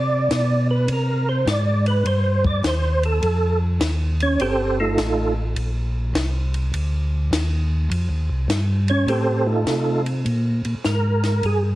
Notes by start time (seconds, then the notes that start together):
Already playing: C3 D5
0.31 B2, snare, hi-hat pedal, ride
0.71 B4
0.88 C3, ride
0.93 A#4
1.29 C5
1.46 G#2 D5, snare, hi-hat pedal, ride
1.86 B4, ride
2.05 G2 C5, ride
2.44 D5, kick
2.63 D#2 C5, snare, hi-hat pedal, ride
3.03 A4, ride
3.22 F2, ride
3.80 D#2, snare, hi-hat pedal, ride
4.20 C#4 C#5, ride
4.39 G1 C4 G4 A4 C5, ride
4.80 A3 D#4 F4 A4
4.97 A1, snare, hi-hat pedal, ride
5.55 A#1, ride
6.14 C2, snare, hi-hat pedal, ride
6.54 ride
6.73 D2, ride
7.31 D#2, snare, hi-hat pedal, ride
7.90 F2, ride
8.09 D#2
8.29 C2
8.48 G2, snare, hi-hat pedal, ride
8.88 C#4 C#5, ride
9.07 A2 C4 G4 A4 C5, ride
9.46 A3 D#4 F4 A4
9.67 C3, snare, hi-hat pedal, ride
10.06 ride
10.25 A#2, ride
10.65 A#2, ride
10.84 G#2 A#4, snare, hi-hat pedal
11.23 snare, ride
11.43 G2 G#4, ride